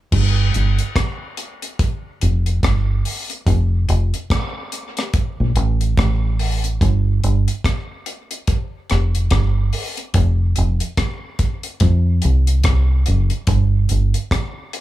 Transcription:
0.12 0.50 G1 loud
0.12 kick loud
0.12 crash loud
0.54 0.77 G1 medium
0.54 closed hi-hat medium
0.79 closed hi-hat medium
0.96 kick loud
0.96 cross-stick loud
0.96 closed hi-hat medium
1.37 closed hi-hat medium
1.62 closed hi-hat medium
1.79 kick loud
1.79 closed hi-hat loud
2.21 2.60 F1 medium
2.21 closed hi-hat medium
2.46 closed hi-hat soft
2.63 3.01 G1 medium
2.63 kick loud
2.63 cross-stick loud
2.63 closed hi-hat medium
3.05 open hi-hat medium
3.30 closed hi-hat medium
3.47 3.85 F1 loud
3.47 kick loud
3.47 closed hi-hat loud
3.89 4.11 F1 medium
3.89 closed hi-hat medium
4.14 closed hi-hat medium
4.30 kick loud
4.30 cross-stick loud
4.30 closed hi-hat medium
4.72 closed hi-hat medium
4.97 cross-stick medium
4.97 closed hi-hat medium
5.14 kick loud
5.14 closed hi-hat loud
5.40 5.55 A#1 medium
5.56 5.94 A1 medium
5.56 closed hi-hat medium
5.81 closed hi-hat medium
5.97 6.77 A1 medium
5.97 kick loud
5.97 cross-stick loud
5.97 closed hi-hat medium
6.39 open hi-hat medium
6.64 closed hi-hat medium
6.81 7.19 G1 loud
6.81 kick loud
6.81 closed hi-hat loud
7.24 7.46 G1 loud
7.24 closed hi-hat medium
7.48 closed hi-hat medium
7.64 kick loud
7.64 cross-stick loud
7.64 closed hi-hat medium
8.06 closed hi-hat medium
8.31 closed hi-hat medium
8.47 kick loud
8.47 closed hi-hat medium
8.90 9.28 F1 medium
8.90 cross-stick medium
8.90 closed hi-hat medium
9.15 closed hi-hat medium
9.31 9.70 G1 medium
9.31 kick loud
9.31 cross-stick loud
9.31 closed hi-hat medium
9.73 open hi-hat medium
9.97 closed hi-hat medium
10.14 10.53 F1 loud
10.14 kick loud
10.14 closed hi-hat loud
10.56 10.80 F1 medium
10.56 closed hi-hat medium
10.80 closed hi-hat medium
10.97 kick loud
10.97 cross-stick loud
10.97 closed hi-hat medium
11.39 kick loud
11.39 closed hi-hat medium
11.63 closed hi-hat medium
11.80 12.19 F2 loud
11.80 kick loud
11.80 closed hi-hat medium
12.22 12.62 C2 medium
12.22 closed hi-hat medium
12.47 closed hi-hat medium
12.64 13.03 C2 medium
12.64 kick loud
12.64 cross-stick loud
12.64 closed hi-hat medium
13.06 13.30 F#1 medium
13.06 closed hi-hat medium
13.30 closed hi-hat medium
13.47 13.86 G1 loud
13.47 kick loud
13.47 closed hi-hat loud
13.89 14.13 G1 medium
13.89 closed hi-hat medium
14.14 closed hi-hat medium
14.31 kick loud
14.31 cross-stick loud
14.31 closed hi-hat medium
14.73 closed hi-hat medium

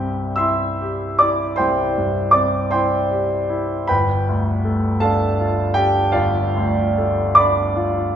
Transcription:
0.00 1.55 C2 soft
0.00 0.22 G2 soft
0.00 0.65 C4 soft
0.00 0.34 G4 soft
0.00 0.34 E5 soft
0.00 0.37 G5 medium
0.36 1.05 E4 soft
0.36 1.15 E5 soft
0.36 1.16 C6 soft
0.36 1.19 E6 medium
0.81 1.44 G4 soft
1.19 1.82 E4 soft
1.19 1.55 D5 soft
1.19 1.58 D6 medium
1.56 3.86 C2 soft
1.56 2.29 C5 soft
1.56 2.30 G5 soft
1.56 2.33 C6 medium
1.97 2.58 G2 soft
2.31 2.96 C4 soft
2.31 2.69 D5 soft
2.31 2.71 D6 medium
2.71 3.36 E4 soft
2.71 3.85 C5 soft
2.71 3.85 G5 soft
2.71 3.88 C6 medium
3.11 3.74 G4 soft
3.49 3.89 E4 soft
3.87 6.11 G1 soft
3.87 4.98 B4 soft
3.87 4.98 G5 medium
3.87 5.02 B5 medium
4.29 4.88 D2 soft
4.65 5.25 A3 soft
5.00 5.62 D4 soft
5.00 5.72 A4 soft
5.00 5.72 F5 soft
5.00 5.76 A5 medium
5.40 5.99 F4 soft
5.74 6.38 D4 soft
5.74 6.11 G4 medium
5.74 6.13 G5 medium
6.12 8.16 G1 soft
6.12 7.34 F4 soft
6.12 7.33 D5 medium
6.12 7.37 F5 medium
6.56 7.23 D2 soft
6.98 7.63 A3 soft
7.35 8.00 D4 soft
7.35 8.16 D5 medium
7.35 8.16 B5 soft
7.35 8.16 D6 medium
7.76 8.16 F4 soft

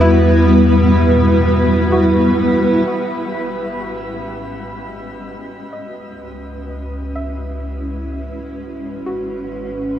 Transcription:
0.00 2.83 E2 medium
0.00 2.87 G3 medium
0.00 2.96 B3 medium
0.00 4.02 B3 medium
0.00 2.88 E4 medium
0.00 3.31 E4 medium
0.00 1.82 F#4 medium
0.00 9.99 F#4 medium
0.00 9.99 B4 medium
1.92 3.31 F#4 medium
2.86 5.68 G#1 medium
2.86 9.99 G#3 medium
3.17 9.99 C#4 medium
3.34 6.17 B4 medium
4.14 5.72 D#5 medium
5.73 8.54 C#2 medium
5.73 9.02 D#5 medium
6.99 8.58 E4 medium
7.15 9.02 E5 medium
8.59 9.99 G#1 medium
9.06 9.99 F#4 medium
9.83 9.99 D#5 medium

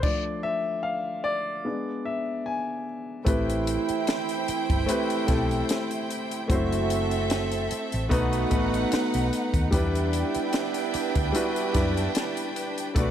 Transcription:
0.03 0.58 F3 soft
0.03 0.58 A3 soft
0.03 0.59 D4 medium
0.03 0.45 D5 medium
0.03 kick loud
0.03 crash medium
0.43 0.85 E5 loud
0.83 1.25 F5 medium
1.24 2.07 D5 loud
1.65 2.20 G#3 medium
1.65 2.20 B3 medium
1.65 2.21 D4 medium
2.05 2.47 E5 medium
2.46 2.83 G#5 medium
3.25 3.76 A1 loud
3.25 6.05 E3 medium
3.25 4.32 A3 medium
3.25 4.32 C4 medium
3.25 6.05 C4 medium
3.25 6.45 E4 medium
3.25 4.32 E4 medium
3.25 6.05 E4 medium
3.25 4.33 G4 medium
3.25 4.33 B4 medium
3.25 6.45 C5 medium
3.25 6.45 G5 loud
3.25 kick loud
3.25 closed hi-hat loud
3.50 closed hi-hat medium
3.67 closed hi-hat medium
3.89 muted fingered electric bass stroke soft
3.89 closed hi-hat soft
4.07 snare loud
4.07 closed hi-hat loud
4.29 closed hi-hat medium
4.48 muted fingered electric bass stroke soft
4.48 closed hi-hat medium
4.70 4.85 G1 medium
4.70 kick loud
4.70 closed hi-hat medium
4.86 5.15 A3 medium
4.86 5.15 C4 medium
4.86 5.16 E4 medium
4.86 5.16 G4 medium
4.86 5.16 B4 loud
4.86 closed hi-hat loud
5.10 closed hi-hat medium
5.27 5.61 B1 medium
5.27 6.06 A3 medium
5.27 6.07 C4 medium
5.27 6.07 E4 medium
5.27 6.08 G4 medium
5.27 6.08 A4 medium
5.27 kick medium
5.27 snare soft
5.27 closed hi-hat medium
5.51 closed hi-hat soft
5.69 snare loud
5.69 closed hi-hat loud
5.91 closed hi-hat medium
6.11 closed hi-hat medium
6.31 closed hi-hat medium
6.48 7.67 F#1 loud
6.48 7.55 A3 medium
6.48 7.69 A3 medium
6.48 7.55 C4 medium
6.48 7.68 C4 medium
6.48 8.08 C4 medium
6.48 7.56 E4 medium
6.48 7.69 F#4 medium
6.48 7.56 F#4 medium
6.48 8.08 A4 medium
6.48 7.57 C5 medium
6.48 8.08 E5 loud
6.48 kick loud
6.48 closed hi-hat loud
6.73 closed hi-hat medium
6.90 closed hi-hat medium
7.11 closed hi-hat medium
7.30 snare loud
7.30 closed hi-hat loud
7.52 closed hi-hat medium
7.71 muted fingered electric bass stroke medium
7.71 closed hi-hat medium
7.92 8.08 A1 medium
7.92 closed hi-hat medium
8.09 8.43 B1 loud
8.09 8.38 A3 loud
8.09 8.38 B3 medium
8.09 9.30 B3 medium
8.09 8.38 D#4 medium
8.09 9.30 D#4 medium
8.09 9.70 D#4 loud
8.09 9.30 F#4 medium
8.09 8.39 F#4 medium
8.09 9.69 B4 medium
8.09 8.39 B4 loud
8.09 9.69 F#5 loud
8.09 kick loud
8.09 closed hi-hat loud
8.33 closed hi-hat medium
8.50 8.84 A1 medium
8.50 9.29 A3 medium
8.50 9.30 B3 medium
8.50 9.30 D#4 medium
8.50 9.31 F#4 medium
8.50 9.31 B4 medium
8.50 kick loud
8.50 closed hi-hat medium
8.74 closed hi-hat soft
8.92 muted fingered electric bass stroke medium
8.92 snare loud
8.92 closed hi-hat loud
9.14 9.29 B1 loud
9.14 closed hi-hat medium
9.33 closed hi-hat medium
9.54 9.69 D#2 medium
9.54 kick loud
9.54 closed hi-hat medium
9.71 10.22 E2 loud
9.71 10.78 G3 medium
9.71 12.52 B3 medium
9.71 10.78 D4 medium
9.71 12.92 D4 loud
9.71 10.79 E4 medium
9.71 12.52 E4 medium
9.71 12.52 G4 medium
9.71 10.79 G4 medium
9.71 12.92 B4 loud
9.71 10.79 B4 loud
9.71 12.92 G5 medium
9.71 kick loud
9.71 closed hi-hat loud
9.95 closed hi-hat medium
10.13 closed hi-hat medium
10.35 muted fingered electric bass stroke medium
10.35 closed hi-hat soft
10.53 snare loud
10.53 closed hi-hat medium
10.74 closed hi-hat medium
10.94 muted fingered electric bass stroke medium
10.94 closed hi-hat medium
11.15 11.31 D2 loud
11.15 kick loud
11.15 closed hi-hat medium
11.33 11.61 G3 loud
11.33 11.61 D4 medium
11.33 11.62 E4 medium
11.33 11.62 F#4 medium
11.33 11.62 B4 loud
11.33 closed hi-hat loud
11.56 closed hi-hat medium
11.73 12.07 F#2 medium
11.73 12.53 D4 medium
11.73 12.53 E4 medium
11.73 12.53 G4 medium
11.73 12.54 B4 medium
11.73 kick loud
11.73 snare soft
11.73 closed hi-hat medium
11.97 closed hi-hat soft
12.15 snare loud
12.15 closed hi-hat loud
12.37 closed hi-hat medium
12.56 closed hi-hat medium
12.78 closed hi-hat medium
12.95 13.11 B1 loud
12.95 13.11 F#3 medium
12.95 13.11 A3 medium
12.95 13.11 B3 medium
12.95 13.11 D4 medium
12.95 13.11 F#4 medium
12.95 13.11 B4 medium
12.95 13.11 D5 loud
12.95 kick loud
12.95 closed hi-hat loud

